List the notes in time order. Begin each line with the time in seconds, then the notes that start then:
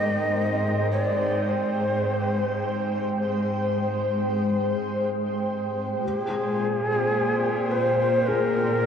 Already playing: G#2 G#3 D#4 C5 D#5 G5 D6
0.91 C#5
1.02 D5
1.49 C5
6.00 A#2 A#3 G4
6.18 G#4
7.59 D5
7.71 C5
8.27 G#4 A#4